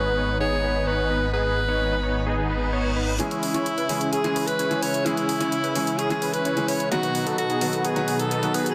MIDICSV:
0, 0, Header, 1, 8, 480
1, 0, Start_track
1, 0, Key_signature, 4, "minor"
1, 0, Tempo, 465116
1, 1379, Time_signature, 4, 2, 24, 8
1, 9026, End_track
2, 0, Start_track
2, 0, Title_t, "Alto saxophone"
2, 0, Program_c, 0, 65
2, 0, Note_on_c, 0, 71, 105
2, 411, Note_off_c, 0, 71, 0
2, 418, Note_on_c, 0, 73, 102
2, 899, Note_on_c, 0, 71, 105
2, 914, Note_off_c, 0, 73, 0
2, 1373, Note_off_c, 0, 71, 0
2, 1380, Note_on_c, 0, 71, 109
2, 2778, Note_off_c, 0, 71, 0
2, 3297, Note_on_c, 0, 64, 104
2, 4256, Note_on_c, 0, 68, 99
2, 4272, Note_off_c, 0, 64, 0
2, 4616, Note_on_c, 0, 71, 104
2, 4631, Note_off_c, 0, 68, 0
2, 4977, Note_on_c, 0, 73, 99
2, 4992, Note_off_c, 0, 71, 0
2, 5218, Note_on_c, 0, 64, 107
2, 5233, Note_off_c, 0, 73, 0
2, 6176, Note_on_c, 0, 68, 99
2, 6192, Note_off_c, 0, 64, 0
2, 6537, Note_on_c, 0, 71, 94
2, 6552, Note_off_c, 0, 68, 0
2, 6897, Note_on_c, 0, 73, 96
2, 6912, Note_off_c, 0, 71, 0
2, 7130, Note_off_c, 0, 73, 0
2, 7136, Note_on_c, 0, 66, 101
2, 7584, Note_off_c, 0, 66, 0
2, 7616, Note_on_c, 0, 66, 93
2, 8099, Note_on_c, 0, 68, 91
2, 8114, Note_off_c, 0, 66, 0
2, 8460, Note_on_c, 0, 69, 93
2, 8475, Note_off_c, 0, 68, 0
2, 8818, Note_on_c, 0, 71, 94
2, 8834, Note_off_c, 0, 69, 0
2, 8983, Note_off_c, 0, 71, 0
2, 8989, Note_on_c, 0, 68, 64
2, 9026, Note_off_c, 0, 68, 0
2, 9026, End_track
3, 0, Start_track
3, 0, Title_t, "Analog synth pad"
3, 0, Program_c, 1, 89
3, 0, Note_on_c, 1, 71, 73
3, 0, Note_on_c, 1, 75, 69
3, 0, Note_on_c, 1, 80, 70
3, 0, Note_on_c, 1, 87, 87
3, 3260, Note_off_c, 1, 71, 0
3, 3261, Note_off_c, 1, 75, 0
3, 3261, Note_off_c, 1, 80, 0
3, 3261, Note_off_c, 1, 87, 0
3, 3298, Note_on_c, 1, 49, 72
3, 3299, Note_on_c, 1, 64, 66
3, 3299, Note_on_c, 1, 68, 83
3, 3300, Note_on_c, 1, 61, 65
3, 7100, Note_off_c, 1, 49, 0
3, 7101, Note_off_c, 1, 61, 0
3, 7101, Note_off_c, 1, 64, 0
3, 7101, Note_off_c, 1, 68, 0
3, 7139, Note_on_c, 1, 59, 67
3, 7139, Note_on_c, 1, 63, 70
3, 7140, Note_on_c, 1, 47, 73
3, 7140, Note_on_c, 1, 66, 82
3, 9026, Note_off_c, 1, 47, 0
3, 9026, Note_off_c, 1, 59, 0
3, 9026, Note_off_c, 1, 63, 0
3, 9026, Note_off_c, 1, 66, 0
3, 9026, End_track
4, 0, Start_track
4, 0, Title_t, "Supersaw synth"
4, 0, Program_c, 2, 81
4, 58, Note_on_c, 2, 59, 80
4, 58, Note_on_c, 2, 63, 68
4, 58, Note_on_c, 2, 71, 83
4, 160, Note_off_c, 2, 71, 0
4, 161, Note_off_c, 2, 59, 0
4, 161, Note_off_c, 2, 63, 0
4, 178, Note_on_c, 2, 59, 75
4, 178, Note_on_c, 2, 63, 66
4, 178, Note_on_c, 2, 73, 79
4, 356, Note_off_c, 2, 59, 0
4, 356, Note_off_c, 2, 63, 0
4, 356, Note_off_c, 2, 73, 0
4, 417, Note_on_c, 2, 59, 87
4, 417, Note_on_c, 2, 63, 84
4, 417, Note_on_c, 2, 68, 99
4, 509, Note_off_c, 2, 59, 0
4, 509, Note_off_c, 2, 63, 0
4, 509, Note_off_c, 2, 68, 0
4, 538, Note_on_c, 2, 59, 75
4, 538, Note_on_c, 2, 63, 70
4, 538, Note_on_c, 2, 68, 83
4, 634, Note_off_c, 2, 59, 0
4, 634, Note_off_c, 2, 63, 0
4, 635, Note_off_c, 2, 68, 0
4, 658, Note_on_c, 2, 59, 76
4, 658, Note_on_c, 2, 63, 66
4, 658, Note_on_c, 2, 71, 79
4, 870, Note_off_c, 2, 59, 0
4, 870, Note_off_c, 2, 63, 0
4, 870, Note_off_c, 2, 71, 0
4, 898, Note_on_c, 2, 59, 86
4, 898, Note_on_c, 2, 63, 78
4, 898, Note_on_c, 2, 73, 97
4, 1110, Note_off_c, 2, 59, 0
4, 1110, Note_off_c, 2, 63, 0
4, 1110, Note_off_c, 2, 73, 0
4, 1137, Note_on_c, 2, 59, 79
4, 1137, Note_on_c, 2, 71, 83
4, 1138, Note_on_c, 2, 63, 67
4, 1342, Note_off_c, 2, 59, 0
4, 1342, Note_off_c, 2, 63, 0
4, 1342, Note_off_c, 2, 71, 0
4, 1378, Note_on_c, 2, 59, 74
4, 1378, Note_on_c, 2, 63, 63
4, 1378, Note_on_c, 2, 68, 75
4, 1662, Note_off_c, 2, 59, 0
4, 1662, Note_off_c, 2, 63, 0
4, 1662, Note_off_c, 2, 68, 0
4, 1737, Note_on_c, 2, 59, 87
4, 1737, Note_on_c, 2, 63, 78
4, 1737, Note_on_c, 2, 73, 85
4, 1949, Note_off_c, 2, 63, 0
4, 1950, Note_off_c, 2, 59, 0
4, 1950, Note_off_c, 2, 73, 0
4, 1978, Note_on_c, 2, 71, 85
4, 1979, Note_on_c, 2, 59, 73
4, 1979, Note_on_c, 2, 63, 74
4, 2081, Note_off_c, 2, 59, 0
4, 2081, Note_off_c, 2, 63, 0
4, 2081, Note_off_c, 2, 71, 0
4, 2097, Note_on_c, 2, 59, 74
4, 2097, Note_on_c, 2, 63, 66
4, 2097, Note_on_c, 2, 73, 82
4, 2275, Note_off_c, 2, 59, 0
4, 2275, Note_off_c, 2, 63, 0
4, 2275, Note_off_c, 2, 73, 0
4, 2337, Note_on_c, 2, 59, 85
4, 2337, Note_on_c, 2, 63, 83
4, 2337, Note_on_c, 2, 68, 98
4, 2429, Note_off_c, 2, 59, 0
4, 2429, Note_off_c, 2, 63, 0
4, 2429, Note_off_c, 2, 68, 0
4, 2458, Note_on_c, 2, 68, 81
4, 2459, Note_on_c, 2, 59, 78
4, 2459, Note_on_c, 2, 63, 68
4, 2555, Note_off_c, 2, 59, 0
4, 2555, Note_off_c, 2, 63, 0
4, 2555, Note_off_c, 2, 68, 0
4, 2578, Note_on_c, 2, 59, 74
4, 2578, Note_on_c, 2, 63, 66
4, 2578, Note_on_c, 2, 71, 82
4, 2790, Note_off_c, 2, 59, 0
4, 2790, Note_off_c, 2, 63, 0
4, 2790, Note_off_c, 2, 71, 0
4, 2817, Note_on_c, 2, 59, 93
4, 2817, Note_on_c, 2, 63, 82
4, 2817, Note_on_c, 2, 73, 99
4, 3029, Note_off_c, 2, 59, 0
4, 3029, Note_off_c, 2, 63, 0
4, 3029, Note_off_c, 2, 73, 0
4, 3056, Note_on_c, 2, 59, 77
4, 3057, Note_on_c, 2, 63, 69
4, 3057, Note_on_c, 2, 71, 80
4, 3262, Note_off_c, 2, 59, 0
4, 3262, Note_off_c, 2, 63, 0
4, 3262, Note_off_c, 2, 71, 0
4, 3296, Note_on_c, 2, 61, 69
4, 3297, Note_on_c, 2, 64, 64
4, 3297, Note_on_c, 2, 68, 77
4, 3581, Note_off_c, 2, 61, 0
4, 3581, Note_off_c, 2, 64, 0
4, 3582, Note_off_c, 2, 68, 0
4, 3657, Note_on_c, 2, 61, 85
4, 3657, Note_on_c, 2, 64, 76
4, 3657, Note_on_c, 2, 73, 93
4, 3869, Note_off_c, 2, 61, 0
4, 3869, Note_off_c, 2, 64, 0
4, 3869, Note_off_c, 2, 73, 0
4, 3897, Note_on_c, 2, 71, 87
4, 3898, Note_on_c, 2, 61, 78
4, 3898, Note_on_c, 2, 64, 74
4, 4000, Note_off_c, 2, 61, 0
4, 4000, Note_off_c, 2, 64, 0
4, 4000, Note_off_c, 2, 71, 0
4, 4017, Note_on_c, 2, 61, 74
4, 4018, Note_on_c, 2, 64, 67
4, 4018, Note_on_c, 2, 73, 82
4, 4196, Note_off_c, 2, 61, 0
4, 4196, Note_off_c, 2, 64, 0
4, 4196, Note_off_c, 2, 73, 0
4, 4257, Note_on_c, 2, 64, 82
4, 4258, Note_on_c, 2, 61, 86
4, 4258, Note_on_c, 2, 68, 101
4, 4349, Note_off_c, 2, 64, 0
4, 4350, Note_off_c, 2, 61, 0
4, 4350, Note_off_c, 2, 68, 0
4, 4378, Note_on_c, 2, 68, 85
4, 4379, Note_on_c, 2, 61, 74
4, 4379, Note_on_c, 2, 64, 70
4, 4475, Note_off_c, 2, 61, 0
4, 4475, Note_off_c, 2, 64, 0
4, 4475, Note_off_c, 2, 68, 0
4, 4499, Note_on_c, 2, 61, 75
4, 4499, Note_on_c, 2, 64, 68
4, 4499, Note_on_c, 2, 71, 83
4, 4710, Note_off_c, 2, 61, 0
4, 4710, Note_off_c, 2, 64, 0
4, 4710, Note_off_c, 2, 71, 0
4, 4739, Note_on_c, 2, 61, 90
4, 4739, Note_on_c, 2, 64, 84
4, 4739, Note_on_c, 2, 73, 100
4, 4950, Note_off_c, 2, 61, 0
4, 4950, Note_off_c, 2, 64, 0
4, 4950, Note_off_c, 2, 73, 0
4, 4978, Note_on_c, 2, 71, 86
4, 4979, Note_on_c, 2, 61, 80
4, 4979, Note_on_c, 2, 64, 72
4, 5183, Note_off_c, 2, 61, 0
4, 5183, Note_off_c, 2, 64, 0
4, 5183, Note_off_c, 2, 71, 0
4, 5219, Note_on_c, 2, 61, 71
4, 5219, Note_on_c, 2, 64, 64
4, 5219, Note_on_c, 2, 68, 77
4, 5503, Note_off_c, 2, 61, 0
4, 5503, Note_off_c, 2, 64, 0
4, 5503, Note_off_c, 2, 68, 0
4, 5578, Note_on_c, 2, 64, 76
4, 5578, Note_on_c, 2, 73, 90
4, 5579, Note_on_c, 2, 61, 86
4, 5790, Note_off_c, 2, 61, 0
4, 5790, Note_off_c, 2, 64, 0
4, 5790, Note_off_c, 2, 73, 0
4, 5818, Note_on_c, 2, 61, 76
4, 5818, Note_on_c, 2, 64, 76
4, 5818, Note_on_c, 2, 71, 89
4, 5920, Note_off_c, 2, 61, 0
4, 5920, Note_off_c, 2, 64, 0
4, 5921, Note_off_c, 2, 71, 0
4, 5939, Note_on_c, 2, 61, 72
4, 5939, Note_on_c, 2, 64, 67
4, 5939, Note_on_c, 2, 73, 87
4, 6116, Note_off_c, 2, 61, 0
4, 6116, Note_off_c, 2, 64, 0
4, 6116, Note_off_c, 2, 73, 0
4, 6178, Note_on_c, 2, 61, 91
4, 6178, Note_on_c, 2, 64, 81
4, 6179, Note_on_c, 2, 68, 103
4, 6270, Note_off_c, 2, 61, 0
4, 6270, Note_off_c, 2, 64, 0
4, 6270, Note_off_c, 2, 68, 0
4, 6298, Note_on_c, 2, 61, 75
4, 6298, Note_on_c, 2, 64, 71
4, 6298, Note_on_c, 2, 68, 85
4, 6394, Note_off_c, 2, 64, 0
4, 6394, Note_off_c, 2, 68, 0
4, 6395, Note_off_c, 2, 61, 0
4, 6417, Note_on_c, 2, 61, 74
4, 6417, Note_on_c, 2, 64, 68
4, 6417, Note_on_c, 2, 71, 81
4, 6629, Note_off_c, 2, 61, 0
4, 6629, Note_off_c, 2, 64, 0
4, 6629, Note_off_c, 2, 71, 0
4, 6657, Note_on_c, 2, 61, 89
4, 6657, Note_on_c, 2, 64, 88
4, 6657, Note_on_c, 2, 73, 106
4, 6869, Note_off_c, 2, 61, 0
4, 6869, Note_off_c, 2, 64, 0
4, 6870, Note_off_c, 2, 73, 0
4, 6897, Note_on_c, 2, 61, 83
4, 6897, Note_on_c, 2, 64, 70
4, 6897, Note_on_c, 2, 71, 90
4, 7102, Note_off_c, 2, 61, 0
4, 7102, Note_off_c, 2, 64, 0
4, 7102, Note_off_c, 2, 71, 0
4, 7138, Note_on_c, 2, 59, 67
4, 7138, Note_on_c, 2, 63, 64
4, 7138, Note_on_c, 2, 66, 78
4, 7422, Note_off_c, 2, 59, 0
4, 7422, Note_off_c, 2, 63, 0
4, 7422, Note_off_c, 2, 66, 0
4, 7497, Note_on_c, 2, 63, 77
4, 7498, Note_on_c, 2, 59, 82
4, 7498, Note_on_c, 2, 69, 96
4, 7709, Note_off_c, 2, 63, 0
4, 7710, Note_off_c, 2, 59, 0
4, 7710, Note_off_c, 2, 69, 0
4, 7737, Note_on_c, 2, 59, 80
4, 7737, Note_on_c, 2, 63, 74
4, 7737, Note_on_c, 2, 68, 92
4, 7840, Note_off_c, 2, 59, 0
4, 7840, Note_off_c, 2, 63, 0
4, 7840, Note_off_c, 2, 68, 0
4, 7857, Note_on_c, 2, 59, 76
4, 7857, Note_on_c, 2, 63, 70
4, 7858, Note_on_c, 2, 69, 85
4, 8035, Note_off_c, 2, 59, 0
4, 8036, Note_off_c, 2, 63, 0
4, 8036, Note_off_c, 2, 69, 0
4, 8098, Note_on_c, 2, 59, 93
4, 8098, Note_on_c, 2, 63, 82
4, 8098, Note_on_c, 2, 66, 103
4, 8190, Note_off_c, 2, 59, 0
4, 8190, Note_off_c, 2, 63, 0
4, 8190, Note_off_c, 2, 66, 0
4, 8217, Note_on_c, 2, 59, 79
4, 8217, Note_on_c, 2, 66, 83
4, 8218, Note_on_c, 2, 63, 72
4, 8314, Note_off_c, 2, 59, 0
4, 8314, Note_off_c, 2, 63, 0
4, 8314, Note_off_c, 2, 66, 0
4, 8338, Note_on_c, 2, 63, 69
4, 8338, Note_on_c, 2, 68, 81
4, 8339, Note_on_c, 2, 59, 79
4, 8550, Note_off_c, 2, 59, 0
4, 8550, Note_off_c, 2, 63, 0
4, 8550, Note_off_c, 2, 68, 0
4, 8578, Note_on_c, 2, 59, 91
4, 8578, Note_on_c, 2, 63, 90
4, 8578, Note_on_c, 2, 69, 102
4, 8790, Note_off_c, 2, 59, 0
4, 8790, Note_off_c, 2, 63, 0
4, 8790, Note_off_c, 2, 69, 0
4, 8817, Note_on_c, 2, 59, 79
4, 8817, Note_on_c, 2, 63, 73
4, 8817, Note_on_c, 2, 68, 87
4, 9022, Note_off_c, 2, 59, 0
4, 9022, Note_off_c, 2, 63, 0
4, 9022, Note_off_c, 2, 68, 0
4, 9026, End_track
5, 0, Start_track
5, 0, Title_t, "Grand piano"
5, 0, Program_c, 3, 0
5, 0, Note_on_c, 3, 51, 72
5, 0, Note_on_c, 3, 56, 69
5, 0, Note_on_c, 3, 59, 66
5, 0, Note_on_c, 3, 68, 77
5, 3264, Note_off_c, 3, 51, 0
5, 3268, Note_off_c, 3, 56, 0
5, 3272, Note_off_c, 3, 59, 0
5, 3276, Note_off_c, 3, 68, 0
5, 3292, Note_on_c, 3, 52, 91
5, 3296, Note_on_c, 3, 56, 82
5, 3300, Note_on_c, 3, 61, 80
5, 3304, Note_on_c, 3, 68, 98
5, 3627, Note_off_c, 3, 52, 0
5, 3629, Note_off_c, 3, 56, 0
5, 3631, Note_off_c, 3, 61, 0
5, 3633, Note_off_c, 3, 68, 0
5, 3653, Note_on_c, 3, 52, 72
5, 3657, Note_on_c, 3, 56, 64
5, 3661, Note_on_c, 3, 61, 64
5, 3665, Note_on_c, 3, 73, 75
5, 3756, Note_off_c, 3, 52, 0
5, 3757, Note_off_c, 3, 56, 0
5, 3759, Note_off_c, 3, 61, 0
5, 3762, Note_off_c, 3, 73, 0
5, 4014, Note_on_c, 3, 52, 73
5, 4017, Note_on_c, 3, 56, 65
5, 4022, Note_on_c, 3, 61, 62
5, 4026, Note_on_c, 3, 68, 80
5, 4348, Note_off_c, 3, 52, 0
5, 4349, Note_off_c, 3, 56, 0
5, 4352, Note_off_c, 3, 61, 0
5, 4354, Note_off_c, 3, 68, 0
5, 4373, Note_on_c, 3, 52, 92
5, 4377, Note_on_c, 3, 56, 81
5, 4381, Note_on_c, 3, 61, 78
5, 4385, Note_on_c, 3, 68, 101
5, 4827, Note_off_c, 3, 52, 0
5, 4829, Note_off_c, 3, 56, 0
5, 4831, Note_off_c, 3, 61, 0
5, 4833, Note_off_c, 3, 68, 0
5, 4852, Note_on_c, 3, 52, 79
5, 4857, Note_on_c, 3, 56, 72
5, 4860, Note_on_c, 3, 61, 71
5, 4865, Note_on_c, 3, 68, 86
5, 5187, Note_off_c, 3, 52, 0
5, 5189, Note_off_c, 3, 56, 0
5, 5191, Note_off_c, 3, 61, 0
5, 5193, Note_off_c, 3, 68, 0
5, 5214, Note_on_c, 3, 52, 93
5, 5217, Note_on_c, 3, 56, 84
5, 5221, Note_on_c, 3, 61, 88
5, 5226, Note_on_c, 3, 68, 95
5, 5548, Note_off_c, 3, 52, 0
5, 5549, Note_off_c, 3, 56, 0
5, 5551, Note_off_c, 3, 61, 0
5, 5554, Note_off_c, 3, 68, 0
5, 5574, Note_on_c, 3, 52, 74
5, 5577, Note_on_c, 3, 56, 68
5, 5581, Note_on_c, 3, 61, 70
5, 5585, Note_on_c, 3, 73, 77
5, 5676, Note_off_c, 3, 52, 0
5, 5677, Note_off_c, 3, 56, 0
5, 5680, Note_off_c, 3, 61, 0
5, 5682, Note_off_c, 3, 73, 0
5, 5933, Note_on_c, 3, 52, 72
5, 5936, Note_on_c, 3, 56, 69
5, 5941, Note_on_c, 3, 61, 63
5, 5945, Note_on_c, 3, 68, 80
5, 6267, Note_off_c, 3, 52, 0
5, 6269, Note_off_c, 3, 56, 0
5, 6271, Note_off_c, 3, 61, 0
5, 6273, Note_off_c, 3, 68, 0
5, 6292, Note_on_c, 3, 52, 96
5, 6296, Note_on_c, 3, 56, 84
5, 6300, Note_on_c, 3, 61, 89
5, 6305, Note_on_c, 3, 68, 102
5, 6747, Note_off_c, 3, 52, 0
5, 6749, Note_off_c, 3, 56, 0
5, 6751, Note_off_c, 3, 61, 0
5, 6753, Note_off_c, 3, 68, 0
5, 6773, Note_on_c, 3, 52, 79
5, 6777, Note_on_c, 3, 56, 74
5, 6780, Note_on_c, 3, 61, 72
5, 6785, Note_on_c, 3, 68, 87
5, 7107, Note_off_c, 3, 52, 0
5, 7109, Note_off_c, 3, 56, 0
5, 7111, Note_off_c, 3, 61, 0
5, 7113, Note_off_c, 3, 68, 0
5, 7133, Note_on_c, 3, 51, 98
5, 7136, Note_on_c, 3, 54, 84
5, 7141, Note_on_c, 3, 59, 85
5, 7145, Note_on_c, 3, 66, 98
5, 7467, Note_off_c, 3, 51, 0
5, 7469, Note_off_c, 3, 54, 0
5, 7471, Note_off_c, 3, 59, 0
5, 7473, Note_off_c, 3, 66, 0
5, 7494, Note_on_c, 3, 51, 75
5, 7499, Note_on_c, 3, 54, 67
5, 7502, Note_on_c, 3, 59, 67
5, 7507, Note_on_c, 3, 69, 81
5, 7596, Note_off_c, 3, 51, 0
5, 7598, Note_off_c, 3, 54, 0
5, 7600, Note_off_c, 3, 59, 0
5, 7602, Note_off_c, 3, 69, 0
5, 7853, Note_on_c, 3, 51, 78
5, 7858, Note_on_c, 3, 54, 66
5, 7861, Note_on_c, 3, 59, 67
5, 7866, Note_on_c, 3, 66, 79
5, 8187, Note_off_c, 3, 51, 0
5, 8190, Note_off_c, 3, 54, 0
5, 8192, Note_off_c, 3, 59, 0
5, 8194, Note_off_c, 3, 66, 0
5, 8213, Note_on_c, 3, 51, 90
5, 8217, Note_on_c, 3, 54, 84
5, 8221, Note_on_c, 3, 59, 83
5, 8225, Note_on_c, 3, 66, 108
5, 8667, Note_off_c, 3, 51, 0
5, 8669, Note_off_c, 3, 54, 0
5, 8671, Note_off_c, 3, 59, 0
5, 8674, Note_off_c, 3, 66, 0
5, 8692, Note_on_c, 3, 51, 75
5, 8697, Note_on_c, 3, 54, 75
5, 8701, Note_on_c, 3, 59, 72
5, 8705, Note_on_c, 3, 66, 82
5, 9026, Note_off_c, 3, 51, 0
5, 9026, Note_off_c, 3, 54, 0
5, 9026, Note_off_c, 3, 59, 0
5, 9026, Note_off_c, 3, 66, 0
5, 9026, End_track
6, 0, Start_track
6, 0, Title_t, "Detuned saw bass"
6, 0, Program_c, 4, 39
6, 0, Note_on_c, 4, 32, 85
6, 3275, Note_off_c, 4, 32, 0
6, 9026, End_track
7, 0, Start_track
7, 0, Title_t, "Reverse cymbal"
7, 0, Program_c, 5, 119
7, 2338, Note_on_c, 5, 60, 69
7, 3299, Note_off_c, 5, 60, 0
7, 9026, End_track
8, 0, Start_track
8, 0, Title_t, "Drums"
8, 3298, Note_on_c, 9, 42, 53
8, 3401, Note_off_c, 9, 42, 0
8, 3418, Note_on_c, 9, 42, 25
8, 3521, Note_off_c, 9, 42, 0
8, 3538, Note_on_c, 9, 46, 94
8, 3641, Note_off_c, 9, 46, 0
8, 3657, Note_on_c, 9, 42, 50
8, 3761, Note_off_c, 9, 42, 0
8, 3778, Note_on_c, 9, 42, 51
8, 3881, Note_off_c, 9, 42, 0
8, 3898, Note_on_c, 9, 42, 25
8, 4002, Note_off_c, 9, 42, 0
8, 4018, Note_on_c, 9, 46, 97
8, 4121, Note_off_c, 9, 46, 0
8, 4137, Note_on_c, 9, 42, 51
8, 4240, Note_off_c, 9, 42, 0
8, 4258, Note_on_c, 9, 42, 53
8, 4361, Note_off_c, 9, 42, 0
8, 4378, Note_on_c, 9, 42, 26
8, 4482, Note_off_c, 9, 42, 0
8, 4499, Note_on_c, 9, 46, 96
8, 4602, Note_off_c, 9, 46, 0
8, 4618, Note_on_c, 9, 42, 54
8, 4722, Note_off_c, 9, 42, 0
8, 4739, Note_on_c, 9, 42, 54
8, 4842, Note_off_c, 9, 42, 0
8, 4859, Note_on_c, 9, 42, 25
8, 4962, Note_off_c, 9, 42, 0
8, 4979, Note_on_c, 9, 46, 97
8, 5083, Note_off_c, 9, 46, 0
8, 5100, Note_on_c, 9, 42, 52
8, 5203, Note_off_c, 9, 42, 0
8, 5220, Note_on_c, 9, 42, 49
8, 5323, Note_off_c, 9, 42, 0
8, 5339, Note_on_c, 9, 42, 25
8, 5443, Note_off_c, 9, 42, 0
8, 5458, Note_on_c, 9, 46, 100
8, 5561, Note_off_c, 9, 46, 0
8, 5578, Note_on_c, 9, 42, 50
8, 5681, Note_off_c, 9, 42, 0
8, 5698, Note_on_c, 9, 42, 50
8, 5802, Note_off_c, 9, 42, 0
8, 5819, Note_on_c, 9, 42, 25
8, 5922, Note_off_c, 9, 42, 0
8, 5939, Note_on_c, 9, 46, 107
8, 6042, Note_off_c, 9, 46, 0
8, 6059, Note_on_c, 9, 42, 50
8, 6162, Note_off_c, 9, 42, 0
8, 6178, Note_on_c, 9, 42, 50
8, 6282, Note_off_c, 9, 42, 0
8, 6299, Note_on_c, 9, 42, 25
8, 6402, Note_off_c, 9, 42, 0
8, 6418, Note_on_c, 9, 46, 101
8, 6521, Note_off_c, 9, 46, 0
8, 6538, Note_on_c, 9, 42, 51
8, 6641, Note_off_c, 9, 42, 0
8, 6659, Note_on_c, 9, 42, 53
8, 6762, Note_off_c, 9, 42, 0
8, 6778, Note_on_c, 9, 42, 25
8, 6881, Note_off_c, 9, 42, 0
8, 6898, Note_on_c, 9, 46, 110
8, 7001, Note_off_c, 9, 46, 0
8, 7018, Note_on_c, 9, 42, 51
8, 7121, Note_off_c, 9, 42, 0
8, 7138, Note_on_c, 9, 42, 46
8, 7241, Note_off_c, 9, 42, 0
8, 7257, Note_on_c, 9, 42, 24
8, 7361, Note_off_c, 9, 42, 0
8, 7378, Note_on_c, 9, 46, 100
8, 7481, Note_off_c, 9, 46, 0
8, 7499, Note_on_c, 9, 42, 48
8, 7602, Note_off_c, 9, 42, 0
8, 7618, Note_on_c, 9, 42, 49
8, 7722, Note_off_c, 9, 42, 0
8, 7737, Note_on_c, 9, 42, 24
8, 7840, Note_off_c, 9, 42, 0
8, 7857, Note_on_c, 9, 46, 111
8, 7960, Note_off_c, 9, 46, 0
8, 7977, Note_on_c, 9, 42, 47
8, 8080, Note_off_c, 9, 42, 0
8, 8096, Note_on_c, 9, 42, 49
8, 8200, Note_off_c, 9, 42, 0
8, 8216, Note_on_c, 9, 42, 25
8, 8320, Note_off_c, 9, 42, 0
8, 8336, Note_on_c, 9, 46, 107
8, 8439, Note_off_c, 9, 46, 0
8, 8457, Note_on_c, 9, 42, 51
8, 8560, Note_off_c, 9, 42, 0
8, 8578, Note_on_c, 9, 42, 50
8, 8681, Note_off_c, 9, 42, 0
8, 8697, Note_on_c, 9, 42, 26
8, 8801, Note_off_c, 9, 42, 0
8, 8817, Note_on_c, 9, 46, 107
8, 8920, Note_off_c, 9, 46, 0
8, 8938, Note_on_c, 9, 42, 49
8, 9026, Note_off_c, 9, 42, 0
8, 9026, End_track
0, 0, End_of_file